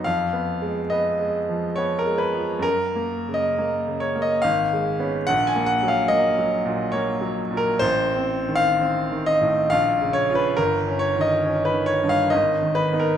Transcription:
<<
  \new Staff \with { instrumentName = "Grand piano" } { \time 3/4 \key fis \major \tempo 4 = 70 f''4 ees''4 cis''16 ais'16 ces''8 | ais'8. dis''8. cis''16 dis''16 eis''4 | fis''16 gis''16 fis''16 eis''16 dis''4 cis''8. ais'16 | c''8. eis''8. ees''8 eis''8 cis''16 b'16 |
ais'8 cis''16 dis''8 b'16 cis''16 eis''16 dis''8 b'16 ais'16 | }
  \new Staff \with { instrumentName = "Grand piano" } { \clef bass \time 3/4 \key fis \major \tuplet 3/2 { f,8 ces'8 aes8 ces'8 aes8 f8 ces'8 aes8 f8 } | \tuplet 3/2 { fis,8 ais8 cis8 ais8 cis8 ais8 gis,,8 gis8 <b cis'>8 } | \tuplet 3/2 { ais,,8 ais8 fis8 ais8 fis8 ais,8 ais8 fis8 ais,8 } | \tuplet 3/2 { a,,8 c'8 ees8 c'8 ees8 a,8 ais,,8 cis8 <cis' eis'>8 } |
\tuplet 3/2 { g,,8 cis'8 dis8 cis'8 dis8 g,8 gis,,8 dis8 <b dis'>8 } | }
>>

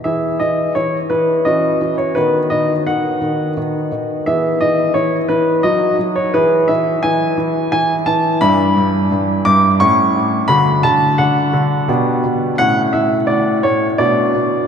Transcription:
<<
  \new Staff \with { instrumentName = "Grand piano" } { \time 3/4 \key e \major \tempo 4 = 86 << { e''8 dis''8 cis''8 b'8 dis''8. cis''16 | b'8 dis''8 fis''4. r8 | e''8 dis''8 cis''8 b'8 dis''8. cis''16 | b'8 e''8 gis''4 gis''8 a''8 |
\key d \major b''4. d'''8 cis'''4 | b''8 a''8 fis''4 r4 | fis''8 e''8 d''8 cis''8 d''4 | } \\ { <e' gis'>2 <cis' fis'>4 | <b fis'>2. | <b gis'>2 <dis' fis'>4 | <e' gis'>2. |
<d' e'>2 <cis' e'>4 | <d' fis'>2 <d' g'>4 | <cis' e'>2 <d' fis'>4 | } >> }
  \new Staff \with { instrumentName = "Grand piano" } { \clef bass \time 3/4 \key e \major e8 e8 e8 e8 e8 e8 | dis8 dis8 dis8 dis8 dis8 dis8 | e8 e8 e8 e8 fis8 fis8 | e8 e8 e8 e8 e8 e8 |
\key d \major g,8 g,8 g,8 g,8 a,8 a,8 | d8 d8 d8 d8 b,8 b,8 | a,8 a,8 a,8 a,8 b,8 b,8 | }
>>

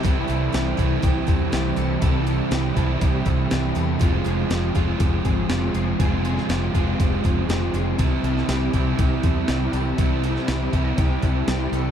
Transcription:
<<
  \new Staff \with { instrumentName = "Twelve-string acoustic guitar" } { \time 4/4 \key c \major \tempo 4 = 120 a'8 a'8 g'8 a'8 g'8 a'8 g'8 a'8 | a'8 a'8 g'8 a'8 g'8 a'8 g'8 a'8 | aes'8 aes'8 g'8 aes'8 g'8 aes'8 g'8 aes'8 | aes'8 aes'8 g'8 aes'8 g'8 aes'8 g'8 aes'8 |
a'8 a'8 g'8 a'8 g'8 a'8 g'8 a'8 | a'8 a'8 g'8 a'8 g'8 a'8 g'8 a'8 | }
  \new Staff \with { instrumentName = "Overdriven electric guitar" } { \time 4/4 \key c \major <c e g c' e'>8 <g c' e'>8 <e g c' e'>8 <g c' e'>4. <e g c' e'>8 <g c' e'>8 | <c e g c' e'>8 <g c' e'>8 <e g c' e'>8 <g c' e'>4. <e g c' e'>8 <g c' e'>8 | <f, c f aes c' f'>8 <f aes c' f'>8 <f aes c' f'>8 <f aes c' f'>4. <f aes c' f'>8 <f aes c' f'>8 | <f, c f aes c' f'>8 <f aes c' f'>8 <f aes c' f'>8 <f aes c' f'>4. <f aes c' f'>8 <f aes c' f'>8 |
<c e g c' e'>8 <g c' e'>8 <e g c' e'>8 <g c' e'>4. <e g c' e'>8 <g c' e'>8 | <c e g c' e'>8 <g c' e'>8 <e g c' e'>8 <g c' e'>4. <e g c' e'>8 <g c' e'>8 | }
  \new Staff \with { instrumentName = "Overdriven electric guitar" } { \clef bass \time 4/4 \key c \major <c e g c' e'>4. <c e g c' e'>2~ <c e g c' e'>8 | <c e g c' e'>4. <c e g c' e'>2~ <c e g c' e'>8 | <f aes c' f'>4. <f aes c' f'>2~ <f aes c' f'>8 | <f aes c' f'>4. <f aes c' f'>2~ <f aes c' f'>8 |
<c g c' e'>4. <c g c' e'>2~ <c g c' e'>8 | <c g c' e'>4. <c g c' e'>2~ <c g c' e'>8 | }
  \new Staff \with { instrumentName = "Fingered electric bass" } { \clef bass \time 4/4 \key c \major c,8 c,8 c,8 c,8 c,8 e,8 c,8 c,8 | c,4 c,8 c,8 c,8 c,8 c,8 e,8 | f,,8 f,,8 f,,8 f,,8 f,,8 aes,,8 f,,8 f,,8 | f,,4 f,,8 f,,8 f,,8 f,,8 f,,8 f,,8 |
c,8 c,8 c,8 c,8 c,8 e,8 c,8 c,8 | c,4 c,8 c,8 c,8 c,8 c,8 c,8 | }
  \new DrumStaff \with { instrumentName = "Drums" } \drummode { \time 4/4 <hh bd>8 hh8 <hh sn>8 <hh bd>8 <hh bd>8 <hh bd>8 <hh sn>8 hh8 | <hh bd>8 hh8 <hh sn>8 <hh bd>8 <hh bd>8 <hh bd>8 <hh sn>8 hh8 | <hh bd>8 hh8 <hh sn>8 <hh bd>8 <hh bd>8 <hh bd>8 <hh sn>8 hh8 | <hh bd>8 hh16 sn16 <hh sn>8 <hh bd>8 <hh bd>8 <hh bd>8 <hh sn>8 hh8 |
<hh bd>8 hh16 sn16 <hh sn>8 <hh bd>8 <hh bd>8 <hh bd>8 <hh sn>8 hh8 | <hh bd>8 hh16 sn16 <hh sn>8 <hh bd>8 <hh bd>8 <hh bd>8 <hh sn>8 hh8 | }
>>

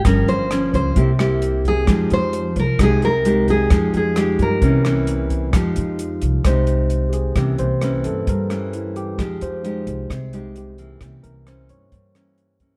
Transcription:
<<
  \new Staff \with { instrumentName = "Nylon-string guitar" } { \time 4/4 \key f \minor \tempo 4 = 132 bes'8 c''4 c''4. r8 aes'8~ | aes'8 c''4 bes'8 aes'8 bes'4 aes'8~ | aes'8 aes'4 bes'2 r8 | r1 |
r1 | r1 | r1 | }
  \new Staff \with { instrumentName = "Tine electric piano" } { \time 4/4 \key f \minor r1 | r1 | r1 | r2 c''4. <g' aes'>8 |
g'8 c''8 b'8 a'8 bes'8 des'8 e'8 g'8 | aes'8 c''8 r2 g'4~ | g'8 bes'8 c''8 des''4. r4 | }
  \new Staff \with { instrumentName = "Tine electric piano" } { \time 4/4 \key f \minor r1 | r1 | r1 | <aes ees'>4. r2 r8 |
<e bes des'>4. r2 r8 | <aes ees'>4. r2 r8 | <e bes des'>1 | }
  \new Staff \with { instrumentName = "Nylon-string guitar" } { \time 4/4 \key f \minor << { <f bes des'>4 <f bes des'>4 <bes e' g'>8 <bes e' g'>4. | <aes ees' g'>4. r8 <aes ees' g'>8 r8 <aes ees' g'>4 | <aes ees' g'>4 <aes ees' g'>4 <e bes des'>8 <e bes des'>4. | <aes ees' g'>2 <aes ees' g'>2 |
<e bes des'>8 r8 <e bes des'>4 r8 <e bes des'>4. | <aes ees' g'>4 <aes ees' g'>4 r8 <aes ees' g'>4 <e bes>8~ | <e bes>4 <e bes des'>4 r8 <e bes des'>4 <e bes des'>8 | } \\ { g,2 c2 | f2 c2 | f2 c2 | f2 c2 |
c2 g,2 | f2 c2 | c2 g,2 | } >> }
  \new Staff \with { instrumentName = "Upright bass" } { \clef bass \time 4/4 \key f \minor g,,8 g,,4 des,8 c,2 | f,8 f,4 c,8 c,2 | f,8 f,4 g,8 c,2 | f,8 f,4 c,8 c,2 |
c,8 c,4 g,8 g,2 | f,8 f,4 c,8 c,2 | c,8 c,4 g,8 g,2 | }
  \new DrumStaff \with { instrumentName = "Drums" } \drummode { \time 4/4 <hh bd ss>8 hh8 <hh ss>8 <hh bd>8 <hh bd>8 <hh ss>8 hh8 <hh bd>8 | <hh bd ss>8 hh8 hh8 <hh bd>8 <hh bd ss>8 hh8 hh8 <hh bd>8 | <hh bd ss>8 hh8 <hh ss>8 <hh bd>8 <hh bd>8 <hh ss>8 hh8 <hh bd>8 | <hh bd ss>8 hh8 hh8 hh8 <hh bd ss>8 hh8 hh8 hh8 |
<hh bd ss>8 hh8 <hh ss>8 hh8 <hh bd>8 <hh ss>8 hh8 hh8 | <hh bd ss>8 hh8 hh8 hh8 <hh bd ss>8 hh8 hh8 hh8 | <hh bd ss>8 hh8 <hh ss>8 hh8 <hh bd>8 <hh ss>8 hh8 <hh bd>8 | }
>>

